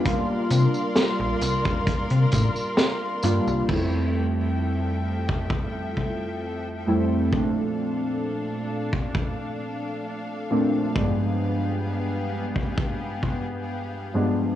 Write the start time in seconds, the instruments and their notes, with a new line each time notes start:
0.04 synth keys G3 A#3 D4 F4, string section A#4 D5 F5 C6, kick, closed hi-hat, tambourine
0.50 fm bass C3, closed hi-hat, tambourine
0.74 tambourine
0.96 snare, closed hi-hat, tambourine
1.20 fm bass A#1
1.41 fm bass C2, closed hi-hat, tambourine
1.65 kick, tambourine
1.87 kick, closed hi-hat, tambourine
2.10 fm bass C3, closed hi-hat
2.32 fm bass A2, kick, closed hi-hat, tambourine
2.56 tambourine
2.77 snare, closed hi-hat, tambourine
3.23 fm bass G2, synth keys G3 A#3 D4 F4, closed hi-hat, tambourine
3.47 fm bass C2, tambourine
3.67 synth keys F2 G3 A3 C4 E4, string section F3 A4 E5 G5, kick, crash
5.29 kick
5.50 kick
5.97 kick
6.86 synth keys F2 G3 A3 C4 E4
7.31 synth keys A#2 F3 A3 C4 D4, string section D4 F5, kick
8.93 kick
9.15 kick
10.50 synth keys A#2 F3 A3 C4 D4
10.95 synth keys G2 F3 G#3 B3 D4, string section B3 G4 G#4, kick
12.56 kick
12.78 kick
13.23 kick
14.14 synth keys G2 F3 G#3 B3 D4